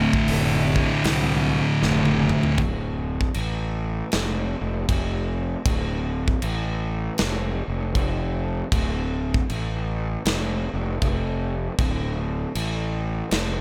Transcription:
Already playing: distorted electric guitar D2 A2 D3
0.13 kick
0.28 fingered electric bass F1, open hi-hat
0.76 distorted electric guitar D2 A2 D3, kick
1.04 fingered electric bass C2, snare, open hi-hat
1.82 fingered electric bass F1, distorted electric guitar D2 A2 D3, snare
2.05 high tom
2.29 mid tom
2.43 floor tom
2.58 fingered electric bass D1, kick, crash
3.21 kick
3.34 fingered electric bass A1, crash
4.12 fingered electric bass F1, snare, crash
4.61 fingered electric bass F1
4.89 fingered electric bass F1, kick, crash
5.66 fingered electric bass D1, kick, crash
6.28 kick
6.42 fingered electric bass A1, crash
7.18 fingered electric bass F1, snare, crash
7.68 fingered electric bass F1
7.95 fingered electric bass F1, kick, crash
8.72 fingered electric bass D1, kick, crash
9.34 kick
9.50 fingered electric bass A1, crash
10.25 fingered electric bass F1, snare, crash
10.73 fingered electric bass F1
11.02 fingered electric bass F1, kick, crash
11.79 fingered electric bass D1, kick, crash
12.55 fingered electric bass A1, crash
13.31 fingered electric bass F1, snare, crash

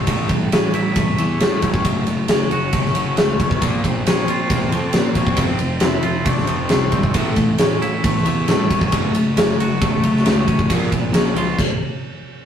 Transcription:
Already playing: clean electric guitar A3
0.07 picked electric bass A1, clean electric guitar A2, overdriven electric guitar A2 E3 A3, cello A3, kick, ride
0.29 picked electric bass A1, overdriven electric guitar A2 E3, cello G3, kick, ride
0.52 picked electric bass A1, overdriven electric guitar A2 E3, clean electric guitar C#4, snare, ride
0.74 picked electric bass A1, overdriven electric guitar A2 E3, clean electric guitar E4, ride
0.96 picked electric bass A1, overdriven electric guitar A2 E3, clean electric guitar A3, kick, ride
1.18 picked electric bass E2, overdriven electric guitar A2 E3, clean electric guitar E3, ride
1.40 picked electric bass A2, overdriven electric guitar A2 E3, cello G3, clean electric guitar A3, snare, ride
1.62 picked electric bass A1, overdriven electric guitar A2 E3, clean electric guitar C#4, kick, ride
1.74 kick
1.85 picked electric bass F#1, overdriven electric guitar F#2 C#3 F#3, clean electric guitar F#2, cello A3, kick, ride
2.07 picked electric bass F#1, overdriven electric guitar F#2 C#3, ride
2.28 picked electric bass F#1, overdriven electric guitar F#2 C#3, cello A3, clean electric guitar C#4, snare, ride
2.51 picked electric bass F#1, overdriven electric guitar F#2 C#3, cello C#4, clean electric guitar F#4, ride
2.73 picked electric bass F#1, overdriven electric guitar F#2 C#3, clean electric guitar A3, kick, ride
2.85 snare
2.95 picked electric bass F#1, overdriven electric guitar F#2 C#3, clean electric guitar F#3, ride
3.17 picked electric bass C#2, overdriven electric guitar F#2 C#3, clean electric guitar A3, cello A3, snare, ride
3.38 picked electric bass F#1, overdriven electric guitar F#2 C#3, cello B3, clean electric guitar C#4, kick, ride
3.51 kick
3.61 picked electric bass A#1, overdriven electric guitar A#2 F3 A#3, clean electric guitar A#2, cello A#3, kick, ride
3.83 picked electric bass A#1, overdriven electric guitar A#2 F3, kick, ride
3.87 cello C4
4.06 picked electric bass A#1, overdriven electric guitar A#2 F3, clean electric guitar C#4, snare, ride
4.28 picked electric bass A#1, overdriven electric guitar A#2 F3, clean electric guitar F4, ride
4.50 picked electric bass A#1, overdriven electric guitar A#2 F3, clean electric guitar A#3, kick, ride
4.71 picked electric bass F2, overdriven electric guitar A#2 F3, clean electric guitar F3, ride
4.93 overdriven electric guitar A#2 F3, picked electric bass A#2, clean electric guitar A#3, snare, ride
5.15 picked electric bass A#1, overdriven electric guitar A#2 F3, cello C4, clean electric guitar C#4, kick, ride
5.27 kick
5.36 picked electric bass F1, overdriven electric guitar F2 C3 F3, clean electric guitar F2, kick, ride
5.59 picked electric bass F1, overdriven electric guitar F2 C3, ride
5.80 picked electric bass F1, overdriven electric guitar F2 C3, clean electric guitar C4, snare, ride
5.85 cello E4
6.03 picked electric bass F1, overdriven electric guitar F2 C3, clean electric guitar F4, ride
6.24 picked electric bass F1, overdriven electric guitar F2 C3, clean electric guitar A3, cello D4, kick, ride
6.38 snare
6.47 picked electric bass F1, overdriven electric guitar F2 C3, clean electric guitar F3, cello C4, ride
6.69 picked electric bass C2, overdriven electric guitar F2 C3, clean electric guitar A3, snare, ride
6.92 picked electric bass G#1, overdriven electric guitar F2 C3, cello G3, clean electric guitar C4, kick, ride
7.03 kick
7.14 picked electric bass A1, overdriven electric guitar A2 E3 A3, clean electric guitar A2, cello A3, kick, ride
7.36 picked electric bass A1, overdriven electric guitar A2 E3, kick, ride
7.58 picked electric bass A1, overdriven electric guitar A2 E3, clean electric guitar C#4, cello C#4, snare, ride
7.82 picked electric bass A1, overdriven electric guitar A2 E3, clean electric guitar E4, ride
8.02 picked electric bass A1, overdriven electric guitar A2 E3, clean electric guitar A3, kick, ride
8.16 snare
8.25 picked electric bass E2, overdriven electric guitar A2 E3, clean electric guitar E3, ride
8.47 overdriven electric guitar A2 E3, picked electric bass A2, clean electric guitar A3, snare, ride
8.52 cello G3
8.70 picked electric bass F1, overdriven electric guitar A2 E3, clean electric guitar C#4, kick, ride
8.81 kick
8.92 picked electric bass F#1, overdriven electric guitar F#2 C#3 F#3, clean electric guitar F#2, kick, ride
8.96 cello A3
9.15 picked electric bass F#1, overdriven electric guitar F#2 C#3, ride
9.36 picked electric bass F#1, overdriven electric guitar F#2 C#3, cello A3, clean electric guitar C#4, snare, ride
9.59 picked electric bass F#1, overdriven electric guitar F#2 C#3, clean electric guitar F#4, ride
9.72 cello F#3
9.81 picked electric bass F#1, overdriven electric guitar F#2 C#3, cello A3, clean electric guitar A3, kick, ride
10.03 picked electric bass F#1, overdriven electric guitar F#2 C#3, clean electric guitar F#3, ride
10.16 snare
10.25 picked electric bass C#2, overdriven electric guitar F#2 C#3, clean electric guitar A3, snare, ride
10.48 picked electric bass A1, overdriven electric guitar F#2 C#3, clean electric guitar C#4, kick, ride
10.59 kick
10.69 picked electric bass A#1, overdriven electric guitar A#2 F3 A#3, clean electric guitar A#2, cello F3, kick, ride
10.92 picked electric bass A#1, overdriven electric guitar A#2 F3, kick, ride
11.12 picked electric bass A#1, overdriven electric guitar A#2 F3, clean electric guitar C#4, snare, ride
11.35 picked electric bass C#2, overdriven electric guitar A#2 F3, clean electric guitar F4, ride
11.59 kick, crash

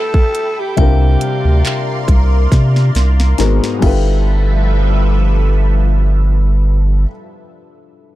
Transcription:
Already playing: felt piano G3 D4 E4 F4 A4 B4, alto saxophone A4, analog synth pad A4 E5 G5 B5
0.14 kick
0.35 closed hi-hat
0.60 alto saxophone G4
0.77 sub bass C2, felt piano C3 G3 D4 F4, alto saxophone G4, analog synth pad A#4 D5 F5 C6, synth bell G5, kick, closed hi-hat
0.81 felt piano A#4
1.21 closed hi-hat
1.45 sub bass D2
1.65 clap, closed hi-hat
2.08 sub bass C2, kick, closed hi-hat
2.52 sub bass C3, kick, snare, closed hi-hat
2.76 snare
2.95 sub bass C2, snare, closed hi-hat
3.20 snare
3.38 sub bass G#1, felt piano G#2 G#3 B3 F#4 A#4, analog synth pad B3 G#4 F#5 A#5, snare, closed hi-hat
3.64 snare
3.79 sub bass G1, analog synth pad F3 A4 B4 E5, felt piano G3 D4 E4, synth bell G5, kick, crash
3.83 analog synth pad G3, felt piano F4 A4 B4

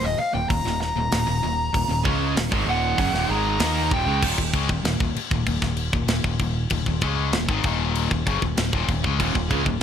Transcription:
0.04 fingered electric bass D#1, overdriven electric guitar D#2 A#2, lead electric guitar D#5
0.18 lead electric guitar F5, muted distorted electric guitar stroke, muted overdriven electric guitar stroke, muted fingered electric bass stroke
0.34 fingered electric bass D#1, overdriven electric guitar D#2 A#2, lead electric guitar G5
0.49 fingered electric bass D#1, overdriven electric guitar D#2 A#2, lead electric guitar A#5, kick, open hi-hat
0.65 fingered electric bass D#1, overdriven electric guitar D#2 A#2, snare
0.81 lead electric guitar A#5, snare
0.96 fingered electric bass D#1, overdriven electric guitar D#2 A#2
1.12 fingered electric bass D#1, overdriven electric guitar D#2 A#2, snare, open hi-hat
1.27 fingered electric bass D#1, overdriven electric guitar D#2 A#2
1.43 fingered electric bass D#1, overdriven electric guitar D#2 A#2
1.74 fingered electric bass D#1, overdriven electric guitar D#2 A#2, kick, open hi-hat
1.89 fingered electric bass D#1, overdriven electric guitar D#2 A#2
2.05 fingered electric bass C#2, overdriven electric guitar C#3 G#3 C#4, kick
2.36 fingered electric bass D#1, overdriven electric guitar D#2 A#2, snare, open hi-hat
2.52 fingered electric bass G#1, overdriven electric guitar G#2 D#3, kick
2.67 fingered electric bass D#1, overdriven electric guitar D#2 A#2 D#3, lead electric guitar F#5
2.98 fingered electric bass F#1, overdriven electric guitar F#2 C#3, kick, open hi-hat
3.14 fingered electric bass D#1, overdriven electric guitar D#2 A#2, snare
3.29 fingered electric bass G#1, overdriven electric guitar G#2 D#3 G#3, lead electric guitar A#5
3.60 fingered electric bass D#2, overdriven electric guitar D#3 A#3 D#4, snare, open hi-hat
3.91 fingered electric bass D#1, overdriven electric guitar D#2 A#2, lead electric guitar G5, kick
4.06 fingered electric bass C#2, overdriven electric guitar C#3 G#3
4.23 fingered electric bass D#1, overdriven electric guitar D#2 A#2, kick, crash
4.38 fingered electric bass D#1, overdriven electric guitar D#2 A#2, kick
4.53 fingered electric bass C#2, overdriven electric guitar C#3 G#3, kick, crash
4.69 fingered electric bass D#1, overdriven electric guitar D#2 A#2, kick
4.83 fingered electric bass D#1, overdriven electric guitar D#2 A#2, snare, crash
5.00 fingered electric bass D#1, overdriven electric guitar D#2 A#2, kick
5.15 muted distorted electric guitar stroke, muted fingered electric bass stroke, muted overdriven electric guitar stroke, crash
5.31 fingered electric bass D#1, overdriven electric guitar D#2 A#2, kick
5.46 fingered electric bass D#1, overdriven electric guitar D#2 A#2, kick, crash
5.62 fingered electric bass D#1, overdriven electric guitar D#2 A#2, kick, snare
5.77 crash
5.93 fingered electric bass D#1, overdriven electric guitar D#2 A#2, kick
6.07 fingered electric bass D#1, overdriven electric guitar D#2 A#2, snare, crash
6.24 fingered electric bass D#1, overdriven electric guitar D#2 A#2, kick
6.39 fingered electric bass D#1, overdriven electric guitar D#2 A#2, kick, crash
6.70 fingered electric bass D#1, overdriven electric guitar D#2 A#2, kick, crash
6.86 fingered electric bass D#1, overdriven electric guitar D#2 A#2, kick
7.01 fingered electric bass C#2, overdriven electric guitar C#3 G#3 C#4, kick, crash
7.33 fingered electric bass D#1, overdriven electric guitar D#2 A#2, snare, crash
7.49 fingered electric bass G#1, overdriven electric guitar G#2 D#3, kick
7.64 fingered electric bass D#1, overdriven electric guitar D#2 A#2 D#3, kick, crash
7.95 crash
8.11 fingered electric bass D#1, overdriven electric guitar D#2 A#2, kick
8.27 fingered electric bass F#1, overdriven electric guitar F#2 C#3, kick, crash
8.42 fingered electric bass D#1, overdriven electric guitar D#2 A#2, kick
8.57 fingered electric bass D#1, overdriven electric guitar D#2 A#2, snare, crash
8.73 fingered electric bass D#1, overdriven electric guitar D#2 A#2, kick
8.88 fingered electric bass D#1, overdriven electric guitar D#2 A#2, kick, crash
9.04 fingered electric bass C#2, overdriven electric guitar C#3 G#3, kick
9.20 fingered electric bass D#1, overdriven electric guitar D#2 A#2, kick, crash
9.35 fingered electric bass D#1, overdriven electric guitar D#2 A#2, kick
9.50 fingered electric bass C#2, overdriven electric guitar C#3 G#3, kick, crash
9.66 fingered electric bass D#1, overdriven electric guitar D#2 A#2, kick
9.80 distorted electric guitar D#2

